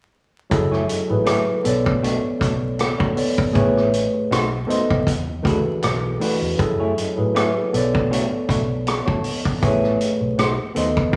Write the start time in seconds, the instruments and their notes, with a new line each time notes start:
0.50 fingered electric bass F#1, tine electric piano F#3 E4 G#4 A4, muted clean electric guitar stroke, kick, closed hi-hat
0.71 clean electric guitar A3 E4 G#4 C#5, cross-stick
0.89 muted clean electric guitar stroke, closed hi-hat
1.08 fingered electric bass A1, tine electric piano F#3 E4 G#4 B4, muted clean electric guitar stroke
1.25 clean electric guitar A3 E4 G#4 C#5, cross-stick, closed hi-hat
1.63 fingered electric bass B1, tine electric piano B3 A4 C#5, muted clean electric guitar stroke, closed hi-hat
1.67 tine electric piano D5
1.84 clean electric guitar A3 D4 F#4 D5, kick
2.02 clean electric guitar A3 D4 F#4 C#5, closed hi-hat
2.23 muted clean electric guitar stroke, muted fingered electric bass stroke
2.40 fingered electric bass B1, clean electric guitar A3 D4 F#4 C#5, kick, closed hi-hat
2.62 muted clean electric guitar stroke
2.79 muted clean electric guitar stroke, cross-stick, closed hi-hat
2.98 clean electric guitar A3 D4 F#4 C#5, kick
3.16 tine electric piano B3 A4 C#5 D5, muted clean electric guitar stroke, open hi-hat
3.38 muted clean electric guitar stroke, kick
3.52 fingered electric bass A1, tine electric piano A3 G#4 B4 C#5, clean electric guitar B3 E4, kick, closed hi-hat
3.57 clean electric guitar G#4 C#5
3.77 cross-stick
3.93 closed hi-hat
4.13 muted clean electric guitar stroke
4.31 fingered electric bass B1, clean electric guitar A3 D#4 F#4 C5, cross-stick, closed hi-hat
4.52 muted clean electric guitar stroke
4.67 clean electric guitar A3 D#4 F#4 C5, tine electric piano B3 A4 C5 D#5, closed hi-hat
4.90 fingered electric bass C2, muted clean electric guitar stroke, kick, cross-stick
5.07 fingered electric bass E2, muted clean electric guitar stroke, kick, closed hi-hat
5.27 muted clean electric guitar stroke
5.42 fingered electric bass D2, tine electric piano E3 D4 F#4 G#4, clean electric guitar A3 D4 F#4 B4, kick
5.47 closed hi-hat
5.52 tine electric piano A4
5.64 muted clean electric guitar stroke
5.81 fingered electric bass B1, muted clean electric guitar stroke, cross-stick, closed hi-hat
6.03 muted clean electric guitar stroke
6.20 tine electric piano E3 D4 F#4 B4, clean electric guitar A3 D4 F#4 B4, open hi-hat
6.41 fingered electric bass E2, muted clean electric guitar stroke
6.57 fingered electric bass F#2, tine electric piano F#3 E4 G#4 A4, muted clean electric guitar stroke, kick, closed hi-hat
6.80 clean electric guitar A3 E4 G#4 C#5
6.97 muted clean electric guitar stroke, closed hi-hat
7.16 fingered electric bass A2, tine electric piano F#3 E4 G#4 B4, muted clean electric guitar stroke
7.34 clean electric guitar A3 E4 G#4 C#5, cross-stick, closed hi-hat
7.73 fingered electric bass B1, tine electric piano B3 A4 C#5 D5, muted clean electric guitar stroke, closed hi-hat
7.93 clean electric guitar A3 D4 F#4 D5, kick, cross-stick
8.10 clean electric guitar A3 D4 F#4 C#5, closed hi-hat
8.31 muted clean electric guitar stroke, muted fingered electric bass stroke
8.48 fingered electric bass B1, clean electric guitar A3 D4 F#4 C#5, kick, closed hi-hat
8.69 muted clean electric guitar stroke
8.86 tine electric piano C#6, muted clean electric guitar stroke, cross-stick, closed hi-hat
9.06 clean electric guitar A3 D4 F#4 C#5, tine electric piano A5, kick
9.24 muted clean electric guitar stroke, open hi-hat
9.44 tine electric piano F#5, muted clean electric guitar stroke, kick
9.62 fingered electric bass A1, tine electric piano A3 G#4 B4 C#5, clean electric guitar B3 E4 G#4 C#5, kick, closed hi-hat
9.84 cross-stick
10.01 closed hi-hat
10.21 fingered electric bass B1, muted clean electric guitar stroke
10.38 fingered electric bass B1, clean electric guitar A3 D#4 F#4 C5, cross-stick, closed hi-hat
10.58 muted clean electric guitar stroke, muted fingered electric bass stroke
10.75 fingered electric bass D#2, clean electric guitar A3 D#4 F#4 C5, tine electric piano B3 A4 C5 D#5, closed hi-hat
10.95 muted clean electric guitar stroke, kick, cross-stick
11.12 clean electric guitar A3 D4 F#4